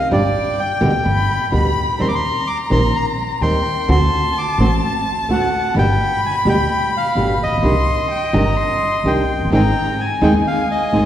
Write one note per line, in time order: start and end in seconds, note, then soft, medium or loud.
0.11 0.31 G1 medium
0.11 0.21 C3 medium
0.11 0.21 G3 medium
0.11 0.21 C4 medium
0.11 0.21 D4 medium
0.11 0.21 G4 medium
0.11 0.61 D5 medium
0.11 1.02 G5 medium
0.60 1.49 G5 medium
0.81 1.01 D2 medium
0.81 0.91 B2 medium
0.81 0.91 D3 medium
0.81 0.91 G3 medium
0.81 0.91 B3 medium
0.81 0.91 G4 medium
1.06 1.26 G1 medium
1.06 1.50 B5 loud
1.52 1.73 D2 medium
1.52 1.69 B2 medium
1.52 1.69 D3 medium
1.52 1.69 G3 medium
1.52 1.70 B3 medium
1.52 1.70 G4 medium
1.52 1.97 B5 medium
1.52 2.02 B5 medium
1.99 2.20 D#2 medium
1.99 2.08 D#3 medium
1.99 2.09 G3 medium
1.99 2.09 C4 medium
1.99 3.43 A#5 medium
1.99 2.08 C6 medium
2.08 2.15 D6 medium
2.15 2.48 C6 medium
2.47 2.58 D6 medium
2.70 2.91 A#1 medium
2.70 2.79 D#3 medium
2.70 2.79 G3 medium
2.70 2.80 C4 medium
2.70 2.96 C6 medium
2.95 3.06 A#5 medium
3.41 3.61 D#2 medium
3.41 3.58 D#3 medium
3.41 3.59 G3 medium
3.41 3.59 C4 medium
3.41 3.91 G5 medium
3.41 3.90 C6 medium
3.88 4.08 D2 medium
3.88 3.97 D3 medium
3.88 3.98 A3 medium
3.88 3.98 C4 medium
3.88 3.98 F#4 medium
3.88 5.77 A5 loud
3.88 4.38 C6 loud
4.38 4.61 D6 medium
4.58 4.78 A1 medium
4.58 4.68 D3 medium
4.58 4.68 A3 medium
4.58 4.68 C4 loud
4.58 4.69 F#4 loud
4.58 4.71 C6 medium
4.85 4.95 A5 medium
5.29 5.49 D2 medium
5.29 5.46 D3 medium
5.29 5.46 A3 medium
5.29 5.47 C4 medium
5.29 5.47 F#4 medium
5.29 5.75 F#5 medium
5.75 5.95 G1 medium
5.75 5.85 B2 medium
5.75 5.85 D3 medium
5.75 5.85 G3 loud
5.75 5.85 B3 medium
5.75 5.85 G4 medium
5.75 6.21 G5 loud
5.75 7.63 B5 loud
6.26 6.36 G#5 medium
6.45 6.65 D2 medium
6.45 6.55 B2 medium
6.45 6.55 D3 medium
6.45 6.55 G3 medium
6.45 6.55 B3 medium
6.45 6.56 G4 medium
6.45 6.91 G5 medium
6.97 7.39 F5 medium
7.15 7.36 G1 medium
7.15 7.33 B2 medium
7.15 7.34 D3 medium
7.15 7.34 G3 medium
7.15 7.34 B3 medium
7.15 7.34 G4 medium
7.43 7.51 A1 soft
7.43 9.11 D#5 medium
7.52 7.57 A#1 medium
7.58 7.62 B1 medium
7.63 7.83 C2 medium
7.63 7.73 C3 medium
7.63 7.73 D#3 medium
7.63 7.73 G3 medium
7.63 7.73 D4 medium
7.63 7.73 G4 medium
7.63 8.08 C6 loud
8.11 8.36 G5 medium
8.33 8.53 G1 medium
8.33 8.43 C3 medium
8.33 8.43 D#3 medium
8.33 8.43 G3 medium
8.33 8.43 D4 medium
8.33 8.43 G4 medium
8.33 8.58 A#5 medium
8.57 9.28 C6 loud
9.04 9.24 C2 medium
9.04 9.22 C3 medium
9.04 9.22 D#3 medium
9.04 9.22 G3 medium
9.04 9.22 D4 medium
9.04 9.22 G4 medium
9.04 9.50 G5 medium
9.34 9.39 F1 soft
9.39 9.44 F#1 medium
9.45 9.50 G1 medium
9.50 9.71 G#1 medium
9.50 9.61 D#3 medium
9.50 9.61 G#3 medium
9.50 9.72 C4 medium
9.50 9.61 C4 medium
9.50 9.61 D#4 medium
9.50 9.72 D#4 medium
9.50 9.61 G#4 medium
9.50 9.72 G#4 medium
9.50 10.01 G5 medium
9.50 9.96 A#5 medium
10.00 11.05 G#5 medium
10.00 10.24 G#5 medium
10.21 10.42 D#2 medium
10.21 10.31 D#3 medium
10.21 10.31 G#3 medium
10.21 10.31 C4 medium
10.21 10.42 C4 medium
10.21 10.31 D#4 medium
10.21 10.42 D#4 medium
10.21 10.32 G#4 medium
10.21 10.43 G#4 medium
10.21 10.34 G5 medium
10.47 10.68 F5 medium
10.71 11.05 D#5 medium
10.92 11.05 G#1 medium
10.92 11.05 D#3 medium
10.92 11.05 G#3 medium
10.92 11.05 C4 medium
10.92 11.05 D#4 medium
10.92 11.05 D#4 soft
10.92 11.05 G#4 medium